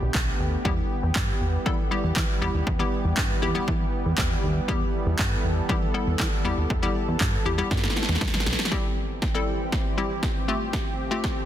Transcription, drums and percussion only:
0.15 kick loud
0.15 clap loud
0.65 kick loud
1.16 kick loud
1.16 clap loud
1.66 kick loud
2.16 kick loud
2.16 clap loud
2.67 kick loud
3.17 kick loud
3.17 clap loud
3.68 kick loud
4.18 kick loud
4.18 clap loud
4.69 kick loud
5.19 kick loud
5.19 clap loud
5.69 kick loud
6.20 kick loud
6.20 clap loud
6.70 kick loud
7.21 kick loud
7.21 clap loud
7.71 kick loud
7.71 snare medium
7.77 snare soft
7.84 snare medium
7.90 snare medium
7.96 snare medium
8.03 snare medium
8.09 snare medium
8.15 snare medium
8.21 kick loud
8.21 snare medium
8.28 snare medium
8.34 snare medium
8.40 snare medium
8.46 snare medium
8.53 snare medium
8.59 snare loud
8.65 snare medium
8.72 kick loud
8.72 snare medium
9.22 kick loud
9.22 snare medium
9.72 kick loud
9.72 snare medium
10.23 kick loud
10.23 snare medium
10.73 kick loud
10.73 snare medium
11.24 kick loud
11.24 snare medium

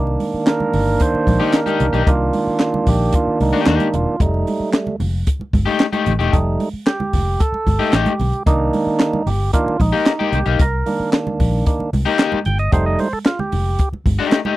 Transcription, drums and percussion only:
0.07 muted conga soft
0.20 open hi-hat medium
0.20 high conga medium
0.47 snare loud
0.47 clap medium
0.47 closed hi-hat medium
0.47 muted conga soft
0.60 high conga medium
0.60 low conga medium
0.73 open hi-hat medium
0.73 low conga medium
1.00 kick loud
1.00 closed hi-hat loud
1.00 muted conga soft
1.15 muted conga soft
1.27 kick medium
1.27 open hi-hat medium
1.27 high conga loud
1.53 snare loud
1.53 clap medium
1.53 closed hi-hat medium
1.53 muted conga soft
1.66 closed hi-hat medium
1.66 high conga medium
1.80 closed hi-hat medium
1.80 low conga medium
1.94 closed hi-hat soft
2.07 kick loud
2.07 closed hi-hat medium
2.07 muted conga soft
2.33 open hi-hat medium
2.33 high conga medium
2.60 snare medium
2.60 clap medium
2.60 closed hi-hat medium
2.60 muted conga soft
2.74 high conga medium
2.74 low conga medium
2.87 kick medium
2.87 open hi-hat medium
2.87 low conga medium
3.13 kick medium
3.13 closed hi-hat loud
3.13 muted conga soft
3.41 open hi-hat medium
3.41 high conga loud
3.66 snare loud
3.66 clap loud
3.66 closed hi-hat medium
3.66 muted conga soft
3.80 closed hi-hat soft
3.80 muted conga soft
3.80 high conga medium
3.94 closed hi-hat medium
3.94 low conga medium
4.20 kick loud
4.20 closed hi-hat medium
4.20 muted conga soft
4.34 muted conga soft
4.47 open hi-hat medium
4.47 high conga medium
4.74 snare loud
4.74 clap medium
4.74 closed hi-hat medium
4.74 muted conga soft
4.87 muted conga soft
4.87 high conga medium
4.87 low conga medium
5.00 open hi-hat medium
5.00 low conga medium
5.27 kick medium
5.27 closed hi-hat loud
5.41 muted conga soft
5.53 kick medium
5.53 open hi-hat medium
5.53 high conga medium
5.80 snare loud
5.80 clap loud
5.80 closed hi-hat loud
5.93 closed hi-hat medium
5.93 muted conga soft
5.93 high conga medium
6.06 closed hi-hat medium
6.06 low conga medium
6.20 closed hi-hat soft
6.33 kick loud
6.33 closed hi-hat medium
6.60 open hi-hat medium
6.60 high conga medium
6.87 snare loud
6.87 clap medium
6.87 closed hi-hat medium
7.00 muted conga soft
7.00 high conga medium
7.00 low conga medium
7.13 kick medium
7.13 open hi-hat medium
7.13 low conga medium
7.40 kick loud
7.40 closed hi-hat medium
7.40 muted conga soft
7.54 muted conga soft
7.67 kick medium
7.67 open hi-hat medium
7.67 high conga medium
7.80 high conga soft
7.93 snare loud
7.93 clap medium
7.93 closed hi-hat medium
8.06 closed hi-hat medium
8.06 muted conga soft
8.06 high conga loud
8.19 open hi-hat medium
8.19 low conga medium
8.33 closed hi-hat soft
8.47 kick loud
8.47 closed hi-hat medium
8.47 muted conga soft
8.73 open hi-hat medium
8.73 high conga medium
9.00 snare loud
9.00 clap medium
9.00 closed hi-hat medium
9.00 muted conga soft
9.13 muted conga soft
9.13 high conga medium
9.13 low conga medium
9.27 open hi-hat medium
9.27 low conga medium
9.53 kick loud
9.53 closed hi-hat loud
9.53 muted conga soft
9.68 muted conga soft
9.80 kick medium
9.80 open hi-hat medium
9.80 high conga loud
10.06 snare loud
10.06 clap medium
10.06 closed hi-hat loud
10.06 muted conga soft
10.21 high conga medium
10.33 closed hi-hat medium
10.33 low conga medium
10.46 closed hi-hat soft
10.59 kick loud
10.59 closed hi-hat medium
10.59 muted conga soft
10.86 open hi-hat medium
10.86 high conga medium
11.13 snare loud
11.13 clap medium
11.13 closed hi-hat medium
11.27 high conga medium
11.27 low conga medium
11.40 kick medium
11.40 open hi-hat medium
11.40 low conga medium
11.66 kick loud
11.66 closed hi-hat loud
11.66 muted conga soft
11.80 muted conga soft
11.93 open hi-hat medium
11.93 high conga loud
12.19 snare loud
12.19 clap loud
12.19 closed hi-hat loud
12.19 muted conga soft
12.32 muted conga soft
12.32 high conga medium
12.45 closed hi-hat medium
12.45 low conga medium
12.59 closed hi-hat soft
12.72 kick loud
12.72 closed hi-hat medium
12.72 muted conga soft
12.99 open hi-hat medium
12.99 high conga medium
13.26 snare loud
13.26 clap medium
13.26 closed hi-hat medium
13.26 muted conga soft
13.39 high conga medium
13.39 low conga medium
13.52 open hi-hat medium
13.52 low conga medium
13.79 kick loud
13.79 closed hi-hat medium
13.79 muted conga soft
13.93 muted conga soft
14.06 kick medium
14.06 open hi-hat medium
14.06 high conga medium
14.32 snare loud
14.32 clap medium
14.32 closed hi-hat loud
14.32 muted conga soft
14.45 muted conga soft
14.45 high conga medium

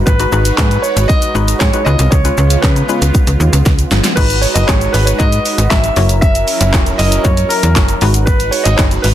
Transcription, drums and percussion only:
0.07 kick loud
0.07 shaker medium
0.20 closed hi-hat soft
0.20 shaker soft
0.32 shaker soft
0.45 closed hi-hat medium
0.45 shaker medium
0.58 kick loud
0.58 snare medium
0.58 clap loud
0.58 shaker medium
0.71 closed hi-hat soft
0.71 shaker soft
0.84 shaker medium
0.97 closed hi-hat medium
0.97 shaker medium
1.09 kick loud
1.09 shaker medium
1.22 closed hi-hat medium
1.22 shaker medium
1.35 shaker medium
1.48 closed hi-hat medium
1.48 shaker medium
1.60 kick loud
1.60 snare medium
1.60 clap loud
1.60 shaker medium
1.73 closed hi-hat medium
1.73 shaker medium
1.86 shaker soft
1.99 closed hi-hat medium
1.99 shaker medium
2.12 kick loud
2.12 shaker medium
2.25 closed hi-hat medium
2.25 shaker soft
2.37 shaker soft
2.50 closed hi-hat medium
2.50 shaker medium
2.63 kick loud
2.63 snare medium
2.63 clap loud
2.63 shaker medium
2.76 closed hi-hat soft
2.76 shaker soft
2.89 shaker medium
3.02 closed hi-hat medium
3.02 shaker medium
3.14 kick loud
3.14 shaker medium
3.27 closed hi-hat medium
3.27 shaker medium
3.40 shaker medium
3.53 closed hi-hat medium
3.53 shaker medium
3.66 kick loud
3.66 snare medium
3.66 shaker medium
3.79 closed hi-hat medium
3.79 shaker medium
3.91 snare medium
3.91 shaker medium
4.04 snare medium
4.04 closed hi-hat medium
4.04 shaker medium
4.17 kick loud
4.17 crash loud
4.17 shaker medium
4.30 closed hi-hat medium
4.30 shaker medium
4.43 open hi-hat medium
4.43 shaker soft
4.56 closed hi-hat medium
4.56 shaker medium
4.69 kick loud
4.69 snare medium
4.69 clap loud
4.69 shaker medium
4.81 closed hi-hat soft
4.81 shaker soft
4.94 open hi-hat medium
4.94 shaker medium
5.07 closed hi-hat medium
5.07 shaker medium
5.20 kick loud
5.20 shaker medium
5.32 closed hi-hat medium
5.32 shaker medium
5.45 open hi-hat medium
5.45 shaker medium
5.58 closed hi-hat medium
5.58 shaker medium
5.71 kick loud
5.71 snare medium
5.71 clap loud
5.71 shaker medium
5.84 closed hi-hat medium
5.84 shaker medium
5.96 open hi-hat medium
5.96 shaker soft
6.09 closed hi-hat medium
6.09 shaker medium
6.22 kick loud
6.22 shaker medium
6.35 closed hi-hat medium
6.35 shaker medium
6.48 open hi-hat medium
6.48 shaker soft
6.61 closed hi-hat medium
6.61 shaker medium
6.74 kick loud
6.74 snare medium
6.74 clap loud
6.74 shaker medium
6.86 closed hi-hat soft
6.86 shaker soft
6.99 open hi-hat medium
6.99 shaker medium
7.12 closed hi-hat medium
7.12 shaker medium
7.25 kick loud
7.25 shaker medium
7.37 closed hi-hat medium
7.37 shaker medium
7.50 open hi-hat medium
7.50 shaker medium
7.63 closed hi-hat medium
7.63 shaker medium
7.75 kick loud
7.75 snare medium
7.75 clap loud
7.75 shaker medium
7.88 closed hi-hat medium
7.88 shaker medium
8.01 open hi-hat medium
8.01 shaker soft
8.14 closed hi-hat medium
8.14 shaker medium
8.27 kick loud
8.27 shaker medium
8.40 closed hi-hat medium
8.40 shaker soft
8.52 open hi-hat medium
8.52 shaker soft
8.65 closed hi-hat medium
8.65 shaker medium
8.79 kick loud
8.79 snare medium
8.79 clap loud
8.79 shaker medium
8.91 closed hi-hat soft
8.91 shaker soft
9.04 open hi-hat medium
9.04 shaker medium

